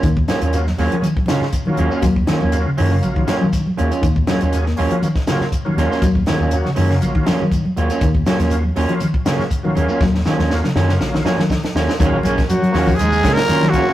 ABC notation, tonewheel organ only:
X:1
M:4/4
L:1/16
Q:"Swing 16ths" 1/4=120
K:Ebm
V:1 name="Tonewheel organ"
z4 [G,B,DF] z [DF] [G,B,DA] z2 [G,B,DF] z2 [G,B,DF]3 | z4 [G,B,DF] z2 [G,B,DF]4 z4 z | z4 [G,B,DA] z [DF] [G,B,DF] z2 [G,B,DF] z2 [G,B,DF]3 | z4 [G,B,DG] z2 [G,B,DF]4 z4 z |
z4 [G,B,DF] z [DF] [G,B,DF] z2 [G,B,DF] z2 [G,B,DF]3 | z4 [G,B,DF] z2 [G,B,DF]4 z4 z | [G,B,DF]3 z3 [G,B,DF]2 z2 [G,B,DF] z [G,B,DF]4 |]